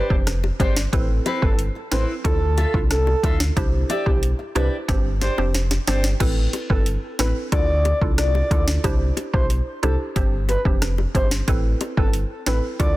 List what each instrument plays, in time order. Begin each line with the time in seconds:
Already playing: steel-string acoustic guitar D4 G4 C5
0.10 sub bass F1, synth pluck C4 D4 G4 C5, kick
0.27 cross-stick, snare, closed hi-hat
0.44 high bongo
0.60 sub bass G1, synth pluck C4 D4 G4 C5, steel-string acoustic guitar D4 G4 C5, soft synth lead C5, kick, closed hi-hat, low bongo
0.76 muted steel-string acoustic guitar stroke, snare
0.93 sub bass A1, synth pluck C4 E4 A4 B4, kick, closed hi-hat, high bongo
1.26 steel-string acoustic guitar C4 E4 B4, closed hi-hat, high bongo
1.42 sub bass G1, synth pluck C4 E4 A4 B4, soft synth lead A4, kick
1.59 closed hi-hat
1.75 muted steel-string acoustic guitar stroke
1.91 sub bass A1, synth pluck C4 E4 A4 B4, steel-string acoustic guitar C4 E4 B4, soft synth lead C5, snare, closed hi-hat, low bongo
2.24 sub bass D2, synth pluck D4 E4 F4 A4, soft synth lead A4, kick, closed hi-hat, high bongo
2.57 steel-string acoustic guitar F4 A4 E5, closed hi-hat, high bongo
2.74 sub bass C2, synth pluck D4 E4 F4 A4, kick
2.90 soft synth lead A4, cross-stick, snare, closed hi-hat
3.07 high bongo
3.23 sub bass D2, synth pluck D4 E4 F4 A4, steel-string acoustic guitar F4 A4 E5, kick, closed hi-hat, low bongo
3.40 muted steel-string acoustic guitar stroke, snare
3.56 sub bass C2, synth pluck D4 E4 G4 C5, kick, closed hi-hat, high bongo
3.89 steel-string acoustic guitar G4 D5 E5, closed hi-hat, high bongo
4.06 sub bass B1, synth pluck D4 E4 G4 C5, soft synth lead G4, kick
4.23 closed hi-hat
4.39 muted steel-string acoustic guitar stroke
4.55 sub bass C2, synth pluck D4 E4 G4 C5, steel-string acoustic guitar G4 D5 E5, soft synth lead B4, closed hi-hat, high bongo, low bongo
4.88 sub bass G1, synth pluck C4 D4 G4 C5, kick, snare, closed hi-hat, high bongo
5.21 steel-string acoustic guitar D4 G4 C5, soft synth lead C5, snare, closed hi-hat, high bongo
5.38 sub bass F1, synth pluck C4 D4 G4 C5, high bongo
5.54 snare, closed hi-hat
5.71 snare, high bongo
5.87 sub bass G1, synth pluck C4 D4 G4 C5, steel-string acoustic guitar D4 G4 C5, snare, closed hi-hat, low bongo
6.04 snare
6.20 sub bass A1, synth pluck C4 E4 A4 B4, kick, closed hi-hat, crash, high bongo
6.53 closed hi-hat, high bongo
6.70 sub bass G1, synth pluck C4 E4 A4 B4, soft synth lead A4, kick
6.86 closed hi-hat
7.19 sub bass A1, synth pluck C4 E4 A4 B4, soft synth lead B4, snare, closed hi-hat, low bongo
7.52 sub bass D2, synth pluck D4 E4 F4 A4, soft synth lead D5, kick, closed hi-hat, high bongo
7.85 closed hi-hat, high bongo
8.01 sub bass C2, synth pluck D4 E4 F4 A4, kick
8.18 soft synth lead D5, cross-stick, snare, closed hi-hat
8.35 high bongo
8.51 sub bass D2, synth pluck D4 E4 F4 A4, kick, closed hi-hat, low bongo
8.68 snare
8.84 sub bass C2, synth pluck D4 E4 G4 C5, kick, closed hi-hat, high bongo
9.17 closed hi-hat, high bongo
9.33 sub bass B1, synth pluck D4 E4 G4 C5, soft synth lead C5, kick
9.50 closed hi-hat
9.83 sub bass C2, synth pluck D4 E4 G4 C5, soft synth lead A4, closed hi-hat, low bongo
10.16 sub bass G1, synth pluck C4 D4 G4 C5, kick, closed hi-hat, high bongo
10.49 soft synth lead B4, closed hi-hat, high bongo
10.65 sub bass F1, synth pluck C4 D4 G4 C5, kick
10.82 cross-stick, snare, closed hi-hat
10.98 high bongo
11.15 sub bass G1, synth pluck C4 D4 G4 C5, soft synth lead C5, kick, closed hi-hat, low bongo
11.31 snare
11.48 sub bass A1, synth pluck C4 E4 A4 B4, kick, closed hi-hat, high bongo
11.81 closed hi-hat, high bongo
11.97 sub bass G1, synth pluck C4 E4 A4 B4, soft synth lead A4, kick
12.13 closed hi-hat
12.46 sub bass A1, synth pluck C4 E4 A4 B4, soft synth lead B4, snare, closed hi-hat, low bongo
12.79 sub bass D2, synth pluck D4 E4 F4 A4, soft synth lead D5, kick, closed hi-hat, high bongo